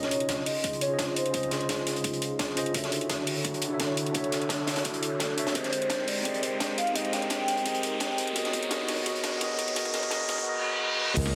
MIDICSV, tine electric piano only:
0, 0, Header, 1, 2, 480
1, 0, Start_track
1, 0, Tempo, 350877
1, 1836, Time_signature, 4, 2, 24, 8
1, 15527, End_track
2, 0, Start_track
2, 0, Title_t, "Tine electric piano"
2, 0, Program_c, 0, 4
2, 0, Note_on_c, 0, 61, 73
2, 0, Note_on_c, 0, 65, 69
2, 0, Note_on_c, 0, 68, 70
2, 0, Note_on_c, 0, 73, 69
2, 0, Note_on_c, 0, 75, 82
2, 199, Control_c, 0, 64, 127
2, 1180, Note_off_c, 0, 61, 0
2, 1197, Note_on_c, 0, 61, 78
2, 1201, Note_off_c, 0, 65, 0
2, 1211, Note_off_c, 0, 68, 0
2, 1217, Note_on_c, 0, 65, 72
2, 1221, Note_off_c, 0, 73, 0
2, 1231, Note_off_c, 0, 75, 0
2, 1238, Note_on_c, 0, 68, 73
2, 1258, Note_on_c, 0, 72, 74
2, 1279, Note_on_c, 0, 75, 87
2, 1776, Note_off_c, 0, 61, 0
2, 1792, Note_on_c, 0, 61, 93
2, 1796, Note_off_c, 0, 65, 0
2, 1807, Note_off_c, 0, 68, 0
2, 1812, Note_on_c, 0, 65, 81
2, 1817, Note_off_c, 0, 72, 0
2, 1827, Note_off_c, 0, 75, 0
2, 1834, Note_on_c, 0, 68, 83
2, 1853, Note_on_c, 0, 72, 87
2, 1874, Note_on_c, 0, 75, 101
2, 3466, Note_off_c, 0, 61, 0
2, 3476, Note_off_c, 0, 65, 0
2, 3487, Note_off_c, 0, 68, 0
2, 3493, Note_on_c, 0, 61, 86
2, 3497, Note_off_c, 0, 72, 0
2, 3503, Note_on_c, 0, 65, 83
2, 3507, Note_off_c, 0, 75, 0
2, 3515, Note_on_c, 0, 68, 80
2, 3524, Note_on_c, 0, 72, 81
2, 3535, Note_on_c, 0, 75, 97
2, 3712, Note_on_c, 0, 62, 74
2, 3717, Note_off_c, 0, 61, 0
2, 3722, Note_off_c, 0, 65, 0
2, 3728, Note_off_c, 0, 68, 0
2, 3732, Note_off_c, 0, 72, 0
2, 3733, Note_on_c, 0, 66, 71
2, 3738, Note_off_c, 0, 75, 0
2, 3754, Note_on_c, 0, 69, 73
2, 3774, Control_c, 0, 64, 0
2, 3775, Note_on_c, 0, 73, 69
2, 4004, Control_c, 0, 64, 127
2, 5022, Note_off_c, 0, 62, 0
2, 5039, Note_on_c, 0, 62, 85
2, 5040, Note_off_c, 0, 66, 0
2, 5050, Note_off_c, 0, 69, 0
2, 5059, Note_on_c, 0, 66, 76
2, 5061, Note_off_c, 0, 73, 0
2, 5080, Note_on_c, 0, 69, 73
2, 5101, Note_on_c, 0, 73, 78
2, 5121, Note_on_c, 0, 76, 90
2, 5616, Note_off_c, 0, 62, 0
2, 5633, Note_on_c, 0, 62, 92
2, 5637, Note_off_c, 0, 66, 0
2, 5648, Note_off_c, 0, 69, 0
2, 5653, Note_on_c, 0, 66, 82
2, 5658, Note_off_c, 0, 73, 0
2, 5668, Note_off_c, 0, 76, 0
2, 5674, Note_on_c, 0, 69, 82
2, 5695, Note_on_c, 0, 73, 85
2, 5716, Note_on_c, 0, 76, 99
2, 7307, Note_off_c, 0, 62, 0
2, 7317, Note_off_c, 0, 66, 0
2, 7327, Note_off_c, 0, 69, 0
2, 7336, Note_on_c, 0, 62, 89
2, 7338, Note_off_c, 0, 73, 0
2, 7346, Note_on_c, 0, 66, 80
2, 7348, Note_off_c, 0, 76, 0
2, 7357, Note_on_c, 0, 69, 80
2, 7367, Note_on_c, 0, 73, 82
2, 7377, Note_on_c, 0, 76, 102
2, 7555, Note_on_c, 0, 60, 72
2, 7558, Note_off_c, 0, 62, 0
2, 7564, Note_off_c, 0, 66, 0
2, 7569, Note_off_c, 0, 69, 0
2, 7574, Note_off_c, 0, 73, 0
2, 7576, Note_on_c, 0, 67, 67
2, 7579, Note_off_c, 0, 76, 0
2, 7597, Note_on_c, 0, 68, 67
2, 7615, Control_c, 0, 64, 0
2, 7617, Note_on_c, 0, 70, 62
2, 7638, Note_on_c, 0, 75, 76
2, 7826, Control_c, 0, 64, 127
2, 8499, Note_off_c, 0, 60, 0
2, 8516, Note_on_c, 0, 60, 76
2, 8521, Note_off_c, 0, 67, 0
2, 8538, Note_off_c, 0, 68, 0
2, 8538, Note_on_c, 0, 67, 66
2, 8548, Note_off_c, 0, 70, 0
2, 8557, Note_on_c, 0, 68, 66
2, 8559, Note_off_c, 0, 75, 0
2, 8578, Note_on_c, 0, 70, 65
2, 8599, Note_on_c, 0, 75, 79
2, 9459, Note_off_c, 0, 60, 0
2, 9475, Note_on_c, 0, 60, 72
2, 9480, Note_off_c, 0, 67, 0
2, 9496, Note_on_c, 0, 67, 66
2, 9498, Note_off_c, 0, 68, 0
2, 9509, Note_off_c, 0, 70, 0
2, 9517, Note_on_c, 0, 68, 69
2, 9519, Note_off_c, 0, 75, 0
2, 9537, Note_on_c, 0, 70, 71
2, 9558, Note_on_c, 0, 75, 84
2, 10418, Note_off_c, 0, 60, 0
2, 10434, Note_on_c, 0, 60, 80
2, 10439, Note_off_c, 0, 67, 0
2, 10455, Note_on_c, 0, 67, 71
2, 10458, Note_off_c, 0, 68, 0
2, 10468, Note_off_c, 0, 70, 0
2, 10477, Note_on_c, 0, 68, 69
2, 10478, Note_off_c, 0, 75, 0
2, 10496, Note_on_c, 0, 70, 70
2, 10517, Note_on_c, 0, 75, 87
2, 11212, Control_c, 0, 64, 0
2, 11393, Note_on_c, 0, 59, 76
2, 11397, Note_off_c, 0, 60, 0
2, 11407, Note_off_c, 0, 67, 0
2, 11414, Note_on_c, 0, 66, 73
2, 11418, Note_off_c, 0, 68, 0
2, 11428, Note_off_c, 0, 70, 0
2, 11428, Control_c, 0, 64, 127
2, 11435, Note_on_c, 0, 68, 70
2, 11438, Note_off_c, 0, 75, 0
2, 11456, Note_on_c, 0, 70, 74
2, 11475, Note_on_c, 0, 75, 82
2, 11857, Note_off_c, 0, 59, 0
2, 11874, Note_on_c, 0, 59, 82
2, 11879, Note_off_c, 0, 66, 0
2, 11895, Note_on_c, 0, 66, 71
2, 11897, Note_off_c, 0, 68, 0
2, 11907, Note_off_c, 0, 70, 0
2, 11915, Note_on_c, 0, 68, 76
2, 11917, Note_off_c, 0, 75, 0
2, 11936, Note_on_c, 0, 70, 73
2, 11957, Note_on_c, 0, 75, 90
2, 12338, Note_off_c, 0, 59, 0
2, 12354, Note_on_c, 0, 59, 81
2, 12359, Note_off_c, 0, 66, 0
2, 12375, Note_on_c, 0, 66, 77
2, 12377, Note_off_c, 0, 68, 0
2, 12387, Note_off_c, 0, 70, 0
2, 12395, Note_on_c, 0, 68, 72
2, 12398, Note_off_c, 0, 75, 0
2, 12417, Note_on_c, 0, 70, 71
2, 12437, Note_on_c, 0, 75, 88
2, 12816, Note_off_c, 0, 59, 0
2, 12832, Note_on_c, 0, 59, 82
2, 12836, Note_off_c, 0, 66, 0
2, 12852, Note_on_c, 0, 66, 77
2, 12857, Note_off_c, 0, 68, 0
2, 12868, Note_off_c, 0, 70, 0
2, 12873, Note_on_c, 0, 68, 73
2, 12878, Note_off_c, 0, 75, 0
2, 12895, Note_on_c, 0, 70, 72
2, 12915, Note_on_c, 0, 75, 93
2, 13295, Note_off_c, 0, 59, 0
2, 13312, Note_on_c, 0, 59, 82
2, 13317, Note_off_c, 0, 66, 0
2, 13333, Note_on_c, 0, 66, 77
2, 13336, Note_off_c, 0, 68, 0
2, 13347, Note_off_c, 0, 70, 0
2, 13354, Note_on_c, 0, 68, 76
2, 13357, Note_off_c, 0, 75, 0
2, 13374, Note_on_c, 0, 70, 75
2, 13395, Note_on_c, 0, 75, 94
2, 13536, Note_off_c, 0, 59, 0
2, 13553, Note_on_c, 0, 59, 77
2, 13557, Note_off_c, 0, 66, 0
2, 13574, Note_on_c, 0, 66, 76
2, 13576, Note_off_c, 0, 68, 0
2, 13587, Note_off_c, 0, 70, 0
2, 13594, Note_on_c, 0, 68, 75
2, 13597, Note_off_c, 0, 75, 0
2, 13615, Note_on_c, 0, 70, 76
2, 13635, Note_on_c, 0, 75, 91
2, 13775, Note_off_c, 0, 59, 0
2, 13792, Note_on_c, 0, 59, 86
2, 13797, Note_off_c, 0, 66, 0
2, 13814, Note_on_c, 0, 66, 76
2, 13817, Note_off_c, 0, 68, 0
2, 13827, Note_off_c, 0, 70, 0
2, 13834, Note_on_c, 0, 68, 77
2, 13837, Note_off_c, 0, 75, 0
2, 13855, Note_on_c, 0, 70, 77
2, 13876, Note_on_c, 0, 75, 93
2, 14015, Note_off_c, 0, 59, 0
2, 14032, Note_on_c, 0, 59, 77
2, 14037, Note_off_c, 0, 66, 0
2, 14053, Note_on_c, 0, 66, 76
2, 14056, Note_off_c, 0, 68, 0
2, 14067, Note_off_c, 0, 70, 0
2, 14074, Note_on_c, 0, 68, 75
2, 14078, Note_off_c, 0, 75, 0
2, 14095, Note_on_c, 0, 70, 76
2, 14114, Note_on_c, 0, 75, 92
2, 14254, Note_off_c, 0, 59, 0
2, 14271, Note_on_c, 0, 59, 86
2, 14275, Note_off_c, 0, 66, 0
2, 14291, Note_on_c, 0, 66, 75
2, 14297, Note_off_c, 0, 68, 0
2, 14307, Note_off_c, 0, 70, 0
2, 14312, Note_on_c, 0, 68, 78
2, 14317, Note_off_c, 0, 75, 0
2, 14333, Note_on_c, 0, 70, 77
2, 14353, Note_on_c, 0, 75, 94
2, 14497, Note_off_c, 0, 59, 0
2, 14513, Note_on_c, 0, 59, 82
2, 14516, Note_off_c, 0, 66, 0
2, 14532, Note_on_c, 0, 66, 74
2, 14535, Note_off_c, 0, 68, 0
2, 14546, Note_off_c, 0, 70, 0
2, 14554, Note_on_c, 0, 68, 79
2, 14556, Note_off_c, 0, 75, 0
2, 14575, Note_on_c, 0, 70, 78
2, 14595, Note_on_c, 0, 75, 96
2, 14738, Note_off_c, 0, 59, 0
2, 14755, Note_on_c, 0, 59, 86
2, 14760, Note_off_c, 0, 66, 0
2, 14776, Note_on_c, 0, 66, 75
2, 14777, Note_off_c, 0, 68, 0
2, 14787, Note_off_c, 0, 70, 0
2, 14796, Note_on_c, 0, 68, 76
2, 14797, Note_off_c, 0, 75, 0
2, 14816, Note_on_c, 0, 70, 79
2, 14837, Note_on_c, 0, 75, 97
2, 14978, Note_off_c, 0, 59, 0
2, 14994, Note_on_c, 0, 59, 81
2, 14998, Note_off_c, 0, 66, 0
2, 15015, Note_on_c, 0, 66, 75
2, 15018, Note_off_c, 0, 68, 0
2, 15027, Note_off_c, 0, 70, 0
2, 15036, Note_on_c, 0, 68, 78
2, 15038, Note_off_c, 0, 75, 0
2, 15057, Note_on_c, 0, 70, 75
2, 15078, Note_on_c, 0, 75, 91
2, 15234, Note_on_c, 0, 61, 79
2, 15237, Note_off_c, 0, 59, 0
2, 15247, Note_off_c, 0, 66, 0
2, 15256, Note_on_c, 0, 65, 72
2, 15258, Note_off_c, 0, 68, 0
2, 15268, Note_off_c, 0, 70, 0
2, 15276, Note_on_c, 0, 68, 72
2, 15278, Note_off_c, 0, 75, 0
2, 15292, Control_c, 0, 64, 0
2, 15297, Note_on_c, 0, 72, 73
2, 15317, Note_on_c, 0, 75, 87
2, 15525, Control_c, 0, 64, 127
2, 15527, Note_off_c, 0, 61, 0
2, 15527, Note_off_c, 0, 65, 0
2, 15527, Note_off_c, 0, 68, 0
2, 15527, Note_off_c, 0, 72, 0
2, 15527, Note_off_c, 0, 75, 0
2, 15527, End_track
0, 0, End_of_file